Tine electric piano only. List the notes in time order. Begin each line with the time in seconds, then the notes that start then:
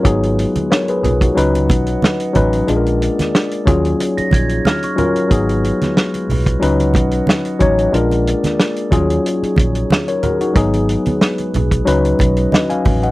0.03 F#3 B3 D#4 G#4
0.71 A#4 C#5
0.89 G#4 B4
1.03 F4 G#4
1.22 D#4 F#4
1.35 F#3 C#4 D#4 B4
2.33 F#3 C#4 D#4 B4
2.67 G#3 D4 F4 G#4
2.77 A#4
3.65 F#3 C#4 F4 G#4
4.96 F#3 C#4 F4 A#4
5.29 F#3 B3 D#4 G#4
6.60 F#3 C#4 D#4 B4
7.59 F#3 C#4 D#4 C#5
7.92 G#3 D4 F4 A#4
8.90 F#3 C#4 F4 G#4
10.08 A#4 C#5
10.23 F#4 A#4
10.41 D#4 F#4
10.54 F#3 B3 D#4 G#4
11.85 F#3 C#4 D#4 B4
12.52 B4 D#5
12.70 F5 G#5
13.03 D#5 F#5